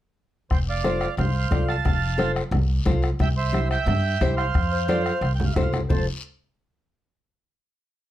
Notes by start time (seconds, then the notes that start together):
0.50 F1 C5 G5, bombo low, bombo rim, high conga, long guiro
0.69 D5 F5
0.84 F4 A4 C5, bombo rim, high conga, short guiro
1.01 bombo rim, short guiro
1.17 C2 C5 F5, bombo rim, high conga, low conga, long guiro
1.51 C2 F4 A4 D5, bombo low, bombo rim, high conga, low conga, short guiro
1.68 F5 A5, bombo rim, short guiro
1.85 F1, bombo low, bombo rim, high conga, low conga, long guiro
2.18 F4 A4 C5, bombo rim, high conga, short guiro
2.36 bombo rim, short guiro
2.51 C2, bombo rim, high conga, low conga, long guiro
2.85 C2 F4 A4 C5, bombo low, bombo rim, high conga, low conga, short guiro
3.02 bombo rim, short guiro
3.19 C2 E5 G5, bombo low, bombo rim, high conga, low conga, long guiro
3.37 C5 E5
3.52 E4 G4 C5, bombo rim, high conga, short guiro
3.71 E5 G5, bombo rim, short guiro
3.86 G2, bombo rim, high conga, low conga, long guiro
4.21 C2 E4 G4 C5, bombo low, bombo rim, high conga, low conga, short guiro
4.37 C5 F5, bombo rim, short guiro
4.54 F2, bombo low, bombo rim, high conga, long guiro
4.72 C5
4.88 F4 A4 C5 D5, bombo rim, high conga, short guiro
5.04 C5, bombo rim, short guiro
5.21 C2, bombo rim, long guiro
5.35 G5
5.40 low conga
5.45 F5
5.53 C2 F4 A4 C5 E5, bombo low, bombo rim, low conga, short guiro
5.63 F5
5.73 bombo rim, low conga, short guiro
5.89 F1 F4 A4 C5 A5, bombo low, low conga, long guiro